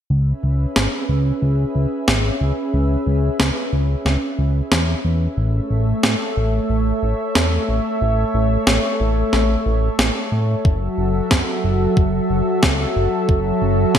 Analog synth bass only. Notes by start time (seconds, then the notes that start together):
0.10 C#2
0.43 C#2
0.76 G#1
1.09 C#2
1.42 C#2
1.75 C#2
2.08 G#1
2.41 C#2
2.74 C#2
3.07 C#2
3.39 C#2
3.72 C#2
4.05 C#2
4.38 C#2
4.72 E2
5.05 E2
5.37 A1
5.71 A1
6.04 A2
6.37 A1
6.70 A1
7.03 A1
7.36 E2
7.69 A1
8.01 A1
8.34 A1
8.67 A1
9.00 A1
9.33 A1
9.66 A1
9.99 A1
10.32 A2
10.65 F#1
10.98 F#1
11.31 F#2
11.64 F#1
11.97 F#1
12.30 F#1
12.63 C#2
12.96 F#1
13.29 F#1
13.62 F#1
13.95 F#1